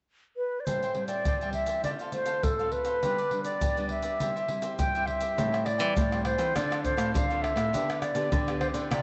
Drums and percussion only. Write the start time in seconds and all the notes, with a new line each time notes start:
0.67 pandeiro, shaker, surdo
0.83 pandeiro, shaker
0.95 pandeiro
1.08 pandeiro, shaker
1.25 pandeiro, shaker, surdo
1.41 pandeiro, shaker
1.53 pandeiro
1.66 pandeiro, shaker
1.84 pandeiro, shaker, surdo
1.99 pandeiro, shaker
2.12 pandeiro, shaker
2.26 pandeiro, shaker
2.43 pandeiro, shaker, surdo
2.59 pandeiro, shaker
2.72 pandeiro
2.85 pandeiro, shaker
3.03 pandeiro, shaker, surdo
3.18 pandeiro, shaker
3.31 pandeiro
3.45 pandeiro, shaker
3.61 pandeiro, shaker, surdo
3.77 pandeiro, shaker
3.89 pandeiro
4.02 pandeiro, shaker
4.20 pandeiro, shaker, surdo
4.37 pandeiro, shaker
4.48 pandeiro
4.62 pandeiro, shaker
4.79 pandeiro, shaker, surdo
4.95 pandeiro, shaker
5.07 pandeiro
5.20 pandeiro, shaker
5.38 pandeiro, shaker, surdo
5.54 pandeiro, tamborim, shaker
5.66 pandeiro, tamborim
5.79 pandeiro, shaker
5.97 pandeiro, shaker, surdo
6.12 pandeiro, tamborim, shaker
6.25 pandeiro, tamborim
6.38 pandeiro, shaker
6.56 pandeiro, tamborim, shaker, surdo
6.72 pandeiro, tamborim, shaker
6.85 pandeiro, shaker, surdo
6.98 pandeiro, tamborim, shaker
7.15 pandeiro, shaker, surdo
7.31 pandeiro, shaker
7.44 pandeiro, tamborim
7.57 pandeiro, tamborim, shaker
7.74 pandeiro, shaker, surdo
7.90 pandeiro, tamborim, shaker
8.02 pandeiro, tamborim, shaker
8.15 pandeiro, shaker
8.32 pandeiro, shaker, surdo
8.48 pandeiro, tamborim, shaker
8.61 pandeiro, tamborim
8.74 pandeiro, shaker
8.91 pandeiro, tamborim, shaker, surdo